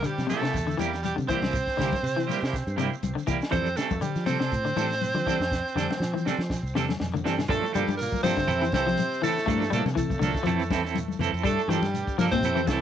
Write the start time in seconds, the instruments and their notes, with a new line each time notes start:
0.03 clean electric guitar D3, trumpet G3, alto saxophone G4, closed hi-hat, shekere
0.18 fingered electric bass C3, snare, closed hi-hat, high conga, shekere
0.27 clean electric guitar C3 G3 A#3 E4 G4, trumpet A3, alto saxophone A4, snare, open hi-hat, high conga, low conga, shekere
0.41 clean electric guitar C3 A#3 E4 G4, snare, closed hi-hat, shekere
0.54 fingered electric bass E2, kick, snare, closed hi-hat, shekere
0.67 clean electric guitar D3, closed hi-hat, shekere
0.78 fingered electric bass E2, clean electric guitar E3 G3 A#3 E4 G4, trumpet G3, alto saxophone G4, snare, closed hi-hat, high conga, shekere
0.93 snare, closed hi-hat, shekere
1.03 trumpet G3, alto saxophone G4, closed hi-hat, high conga, shekere
1.16 fingered electric bass C3, clean electric guitar D3, closed hi-hat, high conga
1.20 shekere
1.27 clean electric guitar E3 G3 A#3 E4 G4, trumpet C4, alto saxophone C5, kick, closed hi-hat, low conga, shekere
1.42 fingered electric bass C2, clean electric guitar E4 G4, snare, closed hi-hat, high conga, shekere
1.53 kick, closed hi-hat, shekere
1.66 kick, snare, closed hi-hat, shekere
1.77 fingered electric bass C2, clean electric guitar D3 G3 A#3 E4 G4, kick, snare, closed hi-hat, low conga, shekere
1.92 kick, snare, closed hi-hat, high conga, shekere
2.03 fingered electric bass C3, closed hi-hat, shekere
2.16 clean electric guitar E3, snare, closed hi-hat, shekere
2.27 clean electric guitar G3 A#3 E4 G4, open hi-hat, high conga, low conga
2.31 shekere
2.40 fingered electric bass C3, clean electric guitar A#3 E4 G4, snare
2.44 shekere
2.53 kick, snare, closed hi-hat, shekere
2.67 fingered electric bass G2, closed hi-hat, shekere
2.76 clean electric guitar C3 G3 A#3 E4 G4, snare, closed hi-hat, high conga, shekere
2.93 shekere
3.03 fingered electric bass C2, closed hi-hat, high conga, shekere
3.15 clean electric guitar D3, shekere
3.27 fingered electric bass C2, clean electric guitar E3 G3 A#3 E4 G4, kick, closed hi-hat, low conga, shekere
3.41 snare, shekere
3.51 fingered electric bass F2, clean electric guitar E3 G3 C4 D4 A4, trumpet C4, alto saxophone C5, kick, snare, closed hi-hat, shekere
3.66 closed hi-hat, shekere
3.76 clean electric guitar G3 C4 D4 A4, trumpet A3, alto saxophone A4, snare, closed hi-hat, low conga, shekere
3.90 fingered electric bass F2, kick, high conga, shekere
4.01 clean electric guitar D3, trumpet G3, alto saxophone G4, closed hi-hat, high conga, shekere
4.15 fingered electric bass F3, snare, closed hi-hat, shekere
4.25 clean electric guitar C3 G3 C4 D4 A4, trumpet C4, alto saxophone C5, open hi-hat, high conga, low conga, shekere
4.39 clean electric guitar C3 C4 D4 A4, snare, closed hi-hat, shekere
4.52 fingered electric bass A2, kick, closed hi-hat, shekere
4.65 clean electric guitar D3, closed hi-hat, shekere
4.76 fingered electric bass A2, clean electric guitar E3 G3 C4 D4 A4, snare, closed hi-hat, high conga, shekere
4.91 snare, closed hi-hat, shekere
5.01 closed hi-hat, high conga, shekere
5.14 clean electric guitar D3, fingered electric bass F3, closed hi-hat, high conga, shekere
5.26 clean electric guitar E3 G3 C4 D4 A4, kick, closed hi-hat, low conga, shekere
5.40 fingered electric bass F2, snare, closed hi-hat, shekere
5.51 kick, snare, shekere
5.67 shekere
5.75 fingered electric bass F2, clean electric guitar D3 G3 D4 A4, snare, low conga, shekere
5.91 snare, high conga, shekere
6.00 fingered electric bass F3, snare, shekere
6.14 clean electric guitar E3, high conga, shekere
6.25 clean electric guitar G3 C4 D4 A4, snare, high conga, low conga, shekere
6.38 fingered electric bass F3, snare, shekere
6.50 kick, snare, shekere
6.63 fingered electric bass C2, shekere
6.75 fingered electric bass E2, clean electric guitar C3 G3 C4 D4 A4, snare, high conga, shekere
6.89 snare, high conga, shekere
7.00 fingered electric bass F2, snare, high conga, shekere
7.14 clean electric guitar D3, low conga, shekere
7.24 fingered electric bass G2, clean electric guitar E3 G3 C4 D4 A4, snare, shekere
7.38 snare, low conga, shekere
7.48 fingered electric bass G2, bass trombone A2, clean electric guitar F3 G3 A#3 D4 A4, alto saxophone A4, kick, snare, closed hi-hat, shekere
7.53 trumpet A3
7.63 closed hi-hat, shekere
7.71 bass trombone G2, fingered electric bass G2, clean electric guitar F3 A#3 D4 A4, alto saxophone G4, closed hi-hat, low conga, shekere
7.76 clean electric guitar G3, trumpet G3
7.87 fingered electric bass G2, closed hi-hat, high conga, shekere
7.97 bass trombone A#2, alto saxophone A#4, closed hi-hat, shekere
8.02 trumpet A#3
8.12 kick, closed hi-hat, high conga, shekere
8.23 fingered electric bass G2, bass trombone C3, clean electric guitar F3 A#3 D4 A4, trumpet C4, alto saxophone C5, open hi-hat, high conga, low conga, shekere
8.37 clean electric guitar D3, kick, snare, closed hi-hat, shekere
8.47 fingered electric bass F2, clean electric guitar E3 C4 E4 A4, closed hi-hat, shekere
8.61 clean electric guitar E3, snare, closed hi-hat, shekere
8.72 fingered electric bass C2, clean electric guitar E3 C4 E4 A4, trumpet C4, alto saxophone C5, kick, snare, closed hi-hat, high conga, shekere
8.77 bass trombone C3
8.86 clean electric guitar F3, snare, shekere
8.97 closed hi-hat, high conga, shekere
9.12 closed hi-hat, shekere
9.22 bass trombone A2, clean electric guitar E3 C4 E4 A4, trumpet A3, alto saxophone A4, open hi-hat, low conga, shekere
9.38 snare, shekere
9.46 fingered electric bass G2, clean electric guitar F3 A3 A#3 D4 A4, kick, snare, closed hi-hat, shekere
9.62 snare, closed hi-hat, shekere
9.70 fingered electric bass A#2, clean electric guitar F3 G3 A#3 D4 A4, alto saxophone A4, closed hi-hat, low conga, shekere
9.75 bass trombone A2, trumpet A3
9.85 fingered electric bass C3, snare, closed hi-hat, high conga, shekere
9.95 clean electric guitar E3, trumpet A3, alto saxophone A4, kick, closed hi-hat, shekere
9.99 bass trombone A2
10.10 kick, closed hi-hat, high conga, shekere
10.19 fingered electric bass C2, clean electric guitar D3 F3 A#3 D4 A4, open hi-hat, high conga, low conga, shekere
10.35 kick, snare, closed hi-hat, shekere
10.43 fingered electric bass F2, clean electric guitar E3 F3 C4 E4 A4, closed hi-hat
10.48 shekere
10.59 closed hi-hat, shekere
10.70 clean electric guitar E3 C4 E4 A4, kick, snare, closed hi-hat, high conga, shekere
10.84 fingered electric bass E2, clean electric guitar C4 E4 A4, snare, shekere
10.95 closed hi-hat, high conga, shekere
11.08 high conga, shekere
11.19 fingered electric bass F2, clean electric guitar E3 C4 E4 A4, closed hi-hat, low conga, shekere
11.33 fingered electric bass F2, clean electric guitar C4 E4, closed hi-hat, shekere
11.43 fingered electric bass G2, clean electric guitar G3 D4 A4, alto saxophone A4, muted clean electric guitar stroke, kick, closed hi-hat, shekere
11.48 bass trombone A2, trumpet A3
11.59 closed hi-hat, shekere
11.68 fingered electric bass G2, bass trombone G2, clean electric guitar E3 F3 A#3 D4 A4, alto saxophone G4, snare, closed hi-hat, shekere
11.73 trumpet G3
11.82 fingered electric bass G2, snare, closed hi-hat, high conga, shekere
11.94 closed hi-hat, high conga, shekere
12.07 kick, closed hi-hat, shekere
12.18 fingered electric bass G2, bass trombone A#2, clean electric guitar F3 A#3 D4 A4, trumpet A#3, alto saxophone A#4, open hi-hat, high conga, low conga, shekere
12.31 clean electric guitar A#2, bass trombone C3, trumpet C4, alto saxophone C5, kick, snare, closed hi-hat, shekere
12.42 fingered electric bass F2, clean electric guitar E3 C4 E4 A4, closed hi-hat, shekere
12.55 clean electric guitar E3, closed hi-hat, shekere
12.67 fingered electric bass C2, bass trombone A2, clean electric guitar E3 C4 E4 A4, trumpet A3, alto saxophone A4, kick, snare, closed hi-hat, high conga, shekere